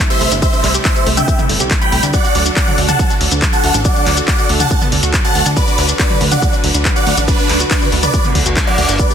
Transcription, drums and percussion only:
0.10 shaker
0.21 open hi-hat
0.32 closed hi-hat, shaker
0.42 kick, closed hi-hat, shaker
0.53 shaker
0.64 clap, open hi-hat
0.74 closed hi-hat, shaker
0.85 kick, clap, closed hi-hat, shaker
0.96 shaker
1.07 open hi-hat
1.17 closed hi-hat, mid tom, shaker
1.28 kick, closed hi-hat, shaker
1.39 mid tom, shaker
1.49 open hi-hat
1.60 closed hi-hat, shaker
1.71 kick, clap, closed hi-hat, shaker
1.82 shaker
1.92 open hi-hat
2.03 closed hi-hat, shaker
2.14 kick, closed hi-hat, shaker
2.24 shaker
2.35 open hi-hat
2.46 closed hi-hat, shaker
2.56 kick, clap, closed hi-hat, shaker
2.67 mid tom, shaker
2.78 open hi-hat
2.89 closed hi-hat, mid tom, shaker
2.99 kick, closed hi-hat, shaker
3.10 shaker
3.21 open hi-hat
3.31 closed hi-hat, shaker
3.42 kick, clap, closed hi-hat, shaker
3.53 shaker
3.64 open hi-hat
3.74 closed hi-hat, shaker
3.85 kick, closed hi-hat, shaker
3.96 shaker
4.07 clap, open hi-hat
4.17 closed hi-hat, shaker
4.28 kick, clap, closed hi-hat, shaker
4.39 shaker
4.49 open hi-hat
4.60 closed hi-hat, mid tom, shaker
4.71 kick, closed hi-hat, shaker
4.82 mid tom, shaker
4.92 open hi-hat
5.03 closed hi-hat, shaker
5.14 kick, clap, closed hi-hat, shaker
5.24 shaker
5.35 open hi-hat
5.46 closed hi-hat, shaker
5.57 kick, closed hi-hat, shaker
5.67 shaker
5.78 open hi-hat
5.89 closed hi-hat, shaker
5.99 kick, clap, closed hi-hat, shaker
6.10 mid tom, shaker
6.21 open hi-hat
6.32 closed hi-hat, mid tom, shaker
6.42 kick, closed hi-hat, shaker
6.53 shaker
6.64 open hi-hat
6.75 closed hi-hat, shaker
6.85 kick, clap, closed hi-hat, shaker
6.96 shaker
7.07 open hi-hat
7.17 closed hi-hat, shaker
7.28 kick, closed hi-hat, shaker
7.39 shaker
7.49 clap, open hi-hat
7.60 closed hi-hat, shaker
7.71 kick, clap, closed hi-hat, shaker
7.82 mid tom, shaker
7.92 open hi-hat
8.03 closed hi-hat, mid tom, shaker
8.14 kick, closed hi-hat, shaker
8.24 mid tom, shaker
8.35 kick, open hi-hat
8.46 closed hi-hat, shaker
8.57 kick, clap, closed hi-hat, shaker
8.67 shaker
8.78 open hi-hat
8.89 closed hi-hat, shaker
8.99 kick, closed hi-hat, shaker
9.10 shaker

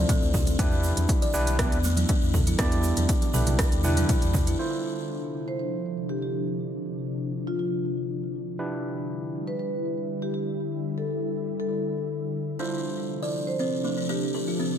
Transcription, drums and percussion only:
0.09 kick, closed hi-hat, mid tom, muted conga, shaker
0.22 shaker
0.34 kick, low conga, shaker
0.47 closed hi-hat, muted conga, shaker
0.59 kick, closed hi-hat, shaker
0.72 muted conga, shaker
0.83 shaker
0.97 closed hi-hat, muted conga, high conga, shaker
1.08 kick, closed hi-hat, shaker
1.22 closed hi-hat, muted conga, shaker
1.33 shaker
1.47 closed hi-hat, shaker
1.58 kick, cross-stick, closed hi-hat, muted conga, high conga, low conga, shaker
1.72 closed hi-hat, shaker
1.84 muted conga, shaker
1.96 closed hi-hat, high conga, shaker
2.08 kick, closed hi-hat, muted conga, shaker
2.22 shaker
2.34 kick, mid tom, high conga, low conga, shaker
2.47 closed hi-hat, muted conga, high conga, shaker
2.59 kick, cross-stick, closed hi-hat, shaker
2.72 closed hi-hat, muted conga, shaker
2.83 shaker
2.97 closed hi-hat, muted conga, high conga, shaker
3.09 kick, closed hi-hat, shaker
3.22 closed hi-hat, muted conga, shaker
3.34 mid tom, high conga, shaker
3.47 closed hi-hat, low conga, shaker
3.59 kick, cross-stick, closed hi-hat, high conga, shaker
3.72 closed hi-hat, shaker
3.84 muted conga, low conga, shaker
3.97 closed hi-hat, high conga, low conga, shaker
4.09 kick, closed hi-hat, mid tom, shaker
4.22 closed hi-hat, shaker
4.34 kick, low conga, shaker
4.47 closed hi-hat, muted conga, shaker

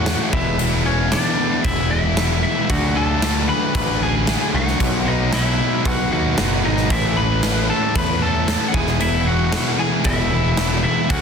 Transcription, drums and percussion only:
0.06 snare, crash
0.33 kick
0.59 crash
1.12 snare, crash
1.65 kick, crash
2.17 snare, crash
2.70 kick, crash
3.22 snare, crash
3.75 kick, crash
4.27 snare, crash
4.68 snare
4.80 kick, crash
5.33 snare, crash
5.85 kick, crash
6.38 snare, crash
6.77 snare
6.90 kick, crash
7.43 snare, crash
7.95 kick, crash
8.48 snare, crash
8.74 kick
8.87 snare
9.00 crash
9.52 snare, crash
10.04 kick, crash
10.57 snare, crash
11.10 kick, crash

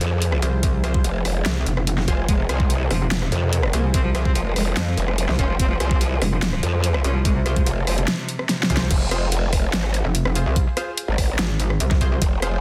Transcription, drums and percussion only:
0.01 closed hi-hat
0.22 closed hi-hat
0.32 cross-stick
0.42 closed hi-hat
0.63 kick, closed hi-hat
0.84 cross-stick, closed hi-hat
0.94 kick
1.04 closed hi-hat
1.25 cross-stick, open hi-hat
1.46 snare, closed hi-hat
1.66 closed hi-hat
1.77 cross-stick
1.87 closed hi-hat
1.98 snare
2.08 kick, closed hi-hat
2.29 kick, closed hi-hat
2.49 cross-stick, closed hi-hat
2.60 kick
2.70 closed hi-hat
2.91 cross-stick, open hi-hat
3.11 snare, closed hi-hat
3.22 cross-stick
3.32 closed hi-hat
3.53 closed hi-hat
3.63 cross-stick
3.73 closed hi-hat
3.94 kick, closed hi-hat
4.15 cross-stick, closed hi-hat
4.25 kick
4.35 closed hi-hat
4.56 cross-stick, open hi-hat
4.77 snare, closed hi-hat
4.97 closed hi-hat
5.08 cross-stick
5.18 closed hi-hat
5.29 snare
5.39 kick, closed hi-hat
5.60 kick, closed hi-hat
5.80 cross-stick, closed hi-hat
5.91 kick
6.01 closed hi-hat
6.22 cross-stick, open hi-hat
6.42 snare, closed hi-hat
6.53 cross-stick
6.63 closed hi-hat
6.84 closed hi-hat
6.94 cross-stick
7.04 closed hi-hat
7.25 kick, closed hi-hat
7.46 cross-stick, closed hi-hat
7.56 kick, closed hi-hat
7.66 closed hi-hat
7.87 cross-stick, open hi-hat
7.98 closed hi-hat
8.08 snare, closed hi-hat
8.29 closed hi-hat
8.39 cross-stick
8.49 snare, closed hi-hat
8.63 snare
8.70 kick, closed hi-hat
8.77 snare
8.91 kick, closed hi-hat, crash
9.11 cross-stick, closed hi-hat
9.32 closed hi-hat
9.53 kick, cross-stick, open hi-hat
9.73 snare, closed hi-hat
9.84 cross-stick
9.94 closed hi-hat
10.15 closed hi-hat
10.25 cross-stick
10.35 closed hi-hat
10.56 kick, closed hi-hat
10.77 cross-stick, closed hi-hat
10.98 closed hi-hat
11.18 kick, cross-stick, open hi-hat
11.39 snare, closed hi-hat
11.60 closed hi-hat
11.70 cross-stick
11.80 closed hi-hat
11.91 kick, snare
12.01 kick, closed hi-hat
12.22 kick, closed hi-hat
12.42 cross-stick, closed hi-hat

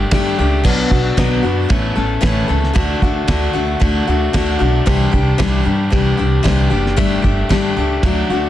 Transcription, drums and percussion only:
0.11 kick, snare, ride bell
0.65 kick, crash
0.91 kick
1.18 kick, snare, ride bell
1.70 kick, ride bell
2.23 kick, snare, ride bell
2.64 snare
2.76 kick, ride bell
3.02 kick
3.28 kick, snare, ride bell
3.81 kick, ride bell
4.34 kick, snare, ride bell
4.87 kick, ride bell
5.13 kick
5.40 kick, snare, ride bell
5.93 kick, ride bell
6.45 kick, snare, ride bell
6.86 snare
6.98 kick, ride bell
7.24 kick
7.50 kick, snare, ride bell
8.03 kick, ride bell

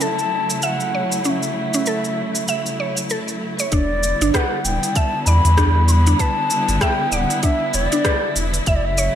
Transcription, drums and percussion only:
0.01 cabasa
0.19 cabasa
0.50 cabasa
0.62 cabasa
0.80 cabasa
1.12 cabasa
1.25 cabasa
1.43 cabasa
1.74 cabasa
1.86 cabasa
2.04 cabasa
2.35 cabasa
2.48 cabasa
2.66 cabasa
2.97 cabasa
3.10 cabasa
3.28 cabasa
3.59 cabasa
3.72 kick, open hi-hat, cabasa
4.03 cabasa
4.21 open hi-hat, cabasa
4.34 kick, cross-stick, open hi-hat, cabasa
4.65 cabasa
4.83 open hi-hat, cabasa
4.96 kick, open hi-hat, cabasa
5.27 cabasa
5.45 open hi-hat, cabasa
5.58 kick, cross-stick, open hi-hat, cabasa
5.88 open hi-hat, cabasa
6.07 open hi-hat, cabasa
6.19 kick, open hi-hat, cabasa
6.50 cabasa
6.69 open hi-hat, cabasa
6.81 kick, cross-stick, open hi-hat, cabasa
7.12 cabasa
7.30 open hi-hat, cabasa
7.43 kick, open hi-hat, cabasa
7.74 cabasa
7.92 open hi-hat, cabasa
8.05 kick, cross-stick, open hi-hat, cabasa
8.36 open hi-hat, cabasa
8.54 open hi-hat, cabasa
8.66 kick, open hi-hat, cabasa
8.98 cabasa

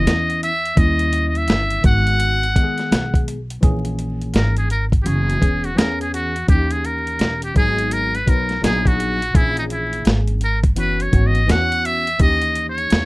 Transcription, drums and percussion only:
0.07 snare, closed hi-hat
0.30 closed hi-hat
0.43 closed hi-hat
0.65 closed hi-hat
0.77 kick, closed hi-hat
0.99 closed hi-hat
1.13 closed hi-hat
1.35 closed hi-hat
1.48 snare, closed hi-hat
1.71 closed hi-hat
1.84 kick, closed hi-hat
2.07 closed hi-hat
2.20 closed hi-hat
2.43 closed hi-hat
2.56 kick, closed hi-hat
2.78 snare, closed hi-hat
2.92 snare, closed hi-hat
3.14 kick, closed hi-hat
3.28 closed hi-hat
3.50 closed hi-hat
3.63 kick, closed hi-hat
3.85 closed hi-hat
3.99 closed hi-hat
4.21 closed hi-hat
4.34 snare, closed hi-hat
4.57 closed hi-hat
4.70 closed hi-hat
4.92 kick, closed hi-hat
5.06 closed hi-hat
5.30 closed hi-hat
5.42 kick, closed hi-hat
5.64 closed hi-hat
5.78 snare, closed hi-hat
6.01 closed hi-hat
6.14 closed hi-hat
6.36 closed hi-hat
6.48 kick, closed hi-hat
6.71 closed hi-hat
6.85 closed hi-hat
7.07 closed hi-hat
7.19 snare, closed hi-hat
7.42 closed hi-hat
7.56 kick, closed hi-hat
7.78 closed hi-hat
7.91 closed hi-hat
8.15 closed hi-hat
8.27 kick, closed hi-hat
8.49 snare, closed hi-hat
8.64 snare, closed hi-hat
8.86 kick, closed hi-hat
9.00 closed hi-hat
9.22 closed hi-hat
9.35 kick, closed hi-hat
9.57 closed hi-hat
9.70 closed hi-hat
9.93 closed hi-hat
10.05 snare, closed hi-hat
10.28 closed hi-hat
10.41 closed hi-hat
10.64 kick, closed hi-hat
10.76 closed hi-hat
11.00 closed hi-hat
11.13 kick, closed hi-hat
11.35 closed hi-hat
11.49 snare, closed hi-hat
11.72 closed hi-hat
11.85 closed hi-hat
12.07 closed hi-hat
12.20 kick, closed hi-hat
12.42 closed hi-hat
12.55 closed hi-hat
12.78 closed hi-hat
12.90 snare, closed hi-hat

